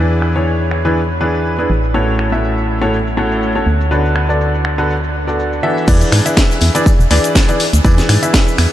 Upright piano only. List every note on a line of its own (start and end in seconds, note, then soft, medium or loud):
0.00 0.32 E3 medium
0.00 0.32 B3 medium
0.00 0.32 D4 medium
0.00 0.32 E4 medium
0.00 0.32 G#4 medium
0.00 0.32 B4 medium
0.36 0.82 E3 medium
0.36 0.82 B3 medium
0.36 0.82 D4 medium
0.36 0.82 E4 medium
0.36 0.82 G#4 medium
0.36 0.82 C#5 medium
0.85 0.99 E3 medium
0.85 0.99 B3 medium
0.85 0.99 D4 medium
0.85 0.99 E4 medium
0.85 0.99 G#4 medium
0.85 0.99 B4 medium
1.21 1.55 E3 medium
1.21 1.55 B3 medium
1.21 1.55 D4 medium
1.21 1.55 E4 medium
1.21 1.55 G#4 medium
1.21 1.55 B4 medium
1.58 1.68 B3 medium
1.58 1.68 D4 medium
1.58 1.68 E4 medium
1.58 1.68 G#4 medium
1.58 1.68 B4 medium
1.94 2.29 A2 medium
1.94 2.29 C#4 medium
1.94 2.29 E4 medium
1.94 2.29 F#4 medium
1.94 2.29 A4 medium
1.94 2.29 C#5 medium
2.32 2.78 A2 medium
2.32 2.78 C#4 medium
2.32 2.78 E4 medium
2.32 2.78 F#4 medium
2.32 2.78 A4 medium
2.32 2.78 E5 medium
2.81 2.95 A2 medium
2.81 2.95 C#4 medium
2.81 2.95 E4 medium
2.81 2.95 F#4 medium
2.81 2.95 A4 medium
2.81 2.95 C#5 medium
3.17 3.52 A2 medium
3.17 3.52 C#4 medium
3.17 3.52 E4 medium
3.17 3.52 F#4 medium
3.17 3.52 A4 medium
3.17 3.52 C#5 medium
3.55 3.65 C#4 medium
3.55 3.65 E4 medium
3.55 3.65 F#4 medium
3.55 3.65 A4 medium
3.55 3.65 C#5 medium
3.91 4.26 D3 medium
3.91 4.26 B3 medium
3.91 4.26 D4 medium
3.91 4.26 F#4 medium
3.91 4.26 A4 medium
3.91 4.26 B4 medium
4.29 4.75 D3 medium
4.29 4.75 B3 medium
4.29 4.75 D4 medium
4.29 4.75 F#4 medium
4.29 4.75 A4 medium
4.29 4.75 D5 medium
4.78 4.92 D3 medium
4.78 4.92 B3 medium
4.78 4.92 D4 medium
4.78 4.92 F#4 medium
4.78 4.92 A4 medium
4.78 4.92 B4 medium
5.27 5.61 D3 medium
5.27 5.60 B3 medium
5.27 5.61 D4 medium
5.27 5.61 F#4 medium
5.27 5.61 A4 medium
5.27 5.61 D5 medium
5.63 5.84 E3 medium
5.63 5.84 B3 medium
5.63 5.84 D4 medium
5.63 5.84 F#4 medium
5.63 5.84 A4 medium
5.63 5.84 E5 loud
5.88 6.23 E3 medium
5.88 6.23 D4 medium
5.88 6.23 E4 medium
5.88 6.23 G#4 medium
5.88 6.23 B4 medium
5.88 6.23 D5 medium
6.26 6.72 E3 medium
6.26 6.72 D4 medium
6.26 6.72 E4 medium
6.26 6.72 G#4 medium
6.26 6.72 B4 medium
6.26 6.72 E5 medium
6.75 6.89 E3 medium
6.75 6.89 D4 medium
6.75 6.89 E4 medium
6.75 6.89 G#4 medium
6.75 6.89 B4 medium
6.75 6.89 D5 loud
7.11 7.46 E3 medium
7.11 7.46 D4 medium
7.11 7.46 E4 medium
7.11 7.46 G#4 medium
7.11 7.46 B4 medium
7.11 7.46 D5 loud
7.49 7.62 E3 medium
7.49 7.62 D4 medium
7.49 7.62 E4 medium
7.49 7.62 G#4 medium
7.49 7.62 B4 medium
7.49 7.62 D5 medium
7.84 8.19 E3 medium
7.84 8.19 D4 medium
7.84 8.19 E4 medium
7.84 8.19 G#4 medium
7.84 8.19 B4 medium
7.84 8.19 D5 loud
8.23 8.69 E3 medium
8.23 8.69 D4 medium
8.23 8.69 E4 medium
8.23 8.69 G#4 medium
8.23 8.69 B4 medium
8.23 8.69 E5 medium